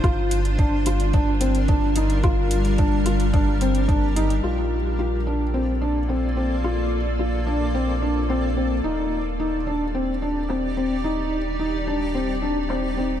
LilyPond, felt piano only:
\new Staff \with { instrumentName = "Felt piano" } { \time 4/4 \key bes \major \tempo 4 = 109 f'4 d'8 f'8 d'8 c'8 d'8 ees'8 | f'4 d'8 f'8 d'8 c'8 d'8 ees'8 | f'4 f'8 d'8 c'8 d'8 c'8 c'8 | f'4 f'8 d'8 c'8 d'8 c'8 c'8 |
ees'4 ees'8 d'8 c'8 d'8 c'8 c'8 | ees'4 ees'8 d'8 c'8 d'8 c'8 c'8 | }